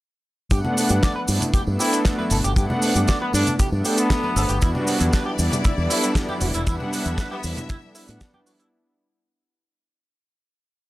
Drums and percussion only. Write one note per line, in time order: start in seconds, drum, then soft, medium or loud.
0.51 kick loud
0.51 closed hi-hat medium
0.51 tambourine medium
0.51 cabasa medium
0.65 tambourine soft
0.65 low conga loud
0.77 open hi-hat loud
0.77 tambourine loud
0.77 cabasa medium
0.89 closed hi-hat medium
0.89 tambourine soft
0.89 high conga medium
0.89 cabasa medium
1.03 kick loud
1.03 snare loud
1.03 closed hi-hat medium
1.03 tambourine medium
1.03 cabasa soft
1.28 open hi-hat loud
1.28 tambourine medium
1.28 cabasa medium
1.41 closed hi-hat medium
1.41 tambourine soft
1.41 low conga loud
1.41 cabasa medium
1.54 kick loud
1.54 closed hi-hat medium
1.54 tambourine medium
1.54 high conga medium
1.54 cabasa medium
1.67 tambourine soft
1.79 open hi-hat loud
1.79 tambourine loud
1.79 cabasa medium
1.93 closed hi-hat medium
1.93 tambourine soft
1.93 cabasa medium
2.05 kick loud
2.05 snare loud
2.05 closed hi-hat medium
2.05 tambourine medium
2.05 cabasa medium
2.19 tambourine soft
2.19 high conga medium
2.30 open hi-hat loud
2.30 tambourine loud
2.30 low conga medium
2.30 cabasa medium
2.44 closed hi-hat medium
2.44 tambourine soft
2.44 cabasa medium
2.56 kick loud
2.56 closed hi-hat medium
2.56 tambourine medium
2.56 cabasa soft
2.70 tambourine soft
2.70 low conga loud
2.82 open hi-hat loud
2.82 tambourine medium
2.82 cabasa medium
2.96 closed hi-hat medium
2.96 tambourine soft
2.96 high conga loud
2.96 cabasa medium
3.08 kick loud
3.08 snare loud
3.08 closed hi-hat medium
3.08 tambourine medium
3.08 cabasa soft
3.33 open hi-hat loud
3.33 tambourine medium
3.33 cabasa medium
3.47 closed hi-hat medium
3.47 tambourine soft
3.47 low conga medium
3.47 cabasa medium
3.59 kick loud
3.59 closed hi-hat medium
3.59 tambourine soft
3.59 high conga medium
3.59 cabasa medium
3.72 tambourine soft
3.85 open hi-hat loud
3.85 tambourine loud
3.85 cabasa medium
3.98 closed hi-hat medium
3.98 tambourine soft
3.98 cabasa medium
4.10 kick loud
4.10 snare loud
4.10 closed hi-hat medium
4.10 tambourine medium
4.10 cabasa medium
4.23 tambourine soft
4.23 high conga medium
4.36 open hi-hat loud
4.36 tambourine loud
4.36 cabasa medium
4.49 closed hi-hat medium
4.49 tambourine soft
4.49 cabasa medium
4.61 kick loud
4.61 closed hi-hat medium
4.61 tambourine medium
4.61 cabasa soft
4.75 tambourine soft
4.75 low conga medium
4.87 open hi-hat loud
4.87 tambourine loud
4.87 cabasa medium
5.00 closed hi-hat medium
5.00 tambourine soft
5.00 high conga loud
5.00 cabasa medium
5.13 kick loud
5.13 snare loud
5.13 closed hi-hat medium
5.13 tambourine medium
5.13 cabasa medium
5.38 open hi-hat loud
5.38 tambourine medium
5.38 cabasa medium
5.52 closed hi-hat medium
5.52 tambourine soft
5.52 low conga loud
5.52 cabasa medium
5.64 kick loud
5.64 closed hi-hat medium
5.64 tambourine medium
5.64 high conga medium
5.64 cabasa soft
5.78 tambourine soft
5.90 open hi-hat loud
5.90 tambourine medium
5.90 cabasa medium
6.03 closed hi-hat medium
6.03 tambourine soft
6.03 cabasa medium
6.15 kick loud
6.15 snare loud
6.15 closed hi-hat medium
6.15 tambourine medium
6.15 cabasa medium
6.29 tambourine soft
6.29 high conga loud
6.41 open hi-hat loud
6.41 tambourine medium
6.41 low conga medium
6.41 cabasa medium
6.54 closed hi-hat medium
6.54 tambourine soft
6.54 cabasa medium
6.67 kick loud
6.67 closed hi-hat medium
6.67 tambourine medium
6.67 cabasa medium
6.80 tambourine soft
6.80 low conga medium
6.93 open hi-hat loud
6.93 tambourine medium
6.93 cabasa medium
7.05 closed hi-hat medium
7.05 tambourine soft
7.05 high conga loud
7.05 cabasa medium
7.18 kick loud
7.18 snare loud
7.18 closed hi-hat medium
7.18 tambourine soft
7.18 cabasa medium
7.32 tambourine soft
7.43 open hi-hat loud
7.43 tambourine medium
7.43 cabasa medium
7.56 closed hi-hat medium
7.56 tambourine soft
7.56 low conga loud
7.56 cabasa medium
7.69 kick loud
7.69 closed hi-hat medium
7.69 tambourine medium
7.69 high conga medium
7.69 cabasa soft
7.82 tambourine soft
7.95 open hi-hat loud
7.95 tambourine loud
7.95 cabasa loud
8.08 closed hi-hat medium
8.08 cabasa medium
8.21 kick loud
8.21 snare loud
8.21 closed hi-hat medium
8.21 tambourine soft
8.21 cabasa medium
8.34 tambourine soft
8.34 high conga medium
8.46 open hi-hat loud
8.46 tambourine medium
8.46 cabasa medium
8.59 closed hi-hat medium
8.59 tambourine soft
8.59 cabasa medium